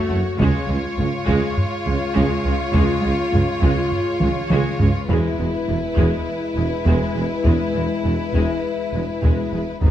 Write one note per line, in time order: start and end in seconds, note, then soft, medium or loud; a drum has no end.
0.00 0.36 A3 medium
0.00 0.35 F#4 medium
0.00 0.36 F#4 medium
0.00 0.36 C#5 medium
0.09 0.22 F#1 medium
0.09 0.18 F#1 medium
0.09 0.17 F#2 medium
0.09 0.18 A3 medium
0.39 0.47 C#2 medium
0.39 0.51 C#2 medium
0.39 0.48 C#2 medium
0.39 0.66 G#3 medium
0.39 4.92 G#3 medium
0.39 5.10 F4 medium
0.39 4.92 F4 medium
0.39 5.06 C#5 medium
0.39 taiko medium
0.68 0.76 C#2 medium
0.68 0.77 C#2 medium
0.68 0.81 C#2 medium
0.68 0.77 G#3 medium
0.98 1.06 C#2 medium
0.98 1.10 C#2 medium
0.98 1.07 G#3 medium
0.98 taiko low medium
1.28 1.36 C#2 medium
1.28 1.40 C#2 medium
1.28 1.55 G#3 medium
1.28 taiko medium
1.57 taiko low medium
1.86 1.98 C#2 medium
1.86 1.95 C#2 medium
1.86 1.94 G#3 medium
2.15 2.23 C#2 medium
2.15 2.27 C#2 medium
2.15 2.24 C#2 medium
2.15 2.43 G#3 medium
2.15 taiko medium
2.45 2.53 C#2 medium
2.45 2.57 C#2 medium
2.45 2.54 C#2 medium
2.45 2.54 G#3 medium
2.74 2.82 C#2 medium
2.74 2.86 C#2 medium
2.74 2.83 C#2 medium
2.74 3.01 G#3 medium
2.74 taiko medium
3.02 3.10 C#2 medium
3.02 3.16 C#2 medium
3.02 3.13 C#2 medium
3.02 3.11 G#3 medium
3.32 3.44 C#2 medium
3.32 3.40 C#2 medium
3.32 3.42 C#2 medium
3.32 3.41 G#3 medium
3.32 taiko low medium
3.61 3.69 C#2 medium
3.61 3.74 C#2 medium
3.61 3.71 C#2 medium
3.61 3.90 G#3 medium
3.61 taiko medium
3.92 taiko low medium
4.20 4.32 C#2 medium
4.20 4.28 C#2 medium
4.20 4.30 C#2 medium
4.20 4.30 G#3 medium
4.20 taiko mid medium
4.50 4.62 C#2 medium
4.50 4.59 C#2 medium
4.50 4.79 G#3 medium
4.50 taiko mid medium
4.78 4.91 C#2 medium
4.78 4.88 C#2 medium
4.78 4.89 C#2 medium
4.78 4.89 G#3 medium
4.78 taiko low medium
5.08 5.20 E1 medium
5.08 5.18 E1 medium
5.08 5.17 E2 medium
5.08 9.78 G#3 medium
5.08 5.37 G#3 medium
5.08 9.78 E4 medium
5.08 9.82 E4 medium
5.08 9.77 B4 medium
5.08 taiko medium
5.37 5.49 E1 medium
5.37 5.47 E1 medium
5.37 5.47 E2 medium
5.37 5.46 G#3 soft
5.67 5.79 E1 medium
5.67 5.77 E1 medium
5.67 5.76 E2 medium
5.67 5.75 G#3 soft
5.96 6.09 E1 medium
5.96 6.06 E1 medium
5.96 6.06 E2 medium
5.96 6.24 G#3 medium
5.96 taiko medium
6.57 6.68 E1 medium
6.57 6.65 E1 medium
6.57 6.65 E2 medium
6.57 6.65 G#3 medium
6.85 6.94 E1 medium
6.85 6.98 E1 medium
6.85 6.94 E2 medium
6.85 7.13 G#3 medium
6.85 taiko medium
7.15 7.23 E1 medium
7.15 7.28 E1 medium
7.15 7.24 E2 soft
7.15 7.24 G#3 medium
7.44 7.57 E1 medium
7.44 7.53 E1 medium
7.44 7.53 E2 medium
7.44 7.72 G#3 medium
7.44 taiko medium
7.74 7.82 E1 soft
7.74 7.87 E1 soft
7.74 7.83 E2 medium
7.74 7.82 G#3 soft
8.04 8.16 E1 soft
8.04 8.12 E1 soft
8.04 8.12 E2 soft
8.04 8.13 G#3 soft
8.34 8.46 E1 medium
8.34 8.42 E1 medium
8.34 8.42 E2 medium
8.34 8.62 G#3 medium
8.34 taiko medium
8.93 9.01 E1 soft
8.93 9.05 E1 soft
8.93 9.02 E2 soft
8.93 9.03 G#3 soft
9.22 9.34 E1 medium
9.22 9.31 E1 medium
9.22 9.32 E2 medium
9.22 9.51 G#3 medium
9.22 taiko medium
9.53 9.64 E1 soft
9.53 9.61 E1 soft
9.53 9.61 E2 soft
9.53 9.62 G#3 soft
9.82 9.91 G#1 medium
9.82 9.90 G#2 medium
9.82 9.91 G#3 soft
9.82 9.91 B3 medium
9.82 9.91 D#4 medium
9.82 9.91 B4 medium
9.82 taiko medium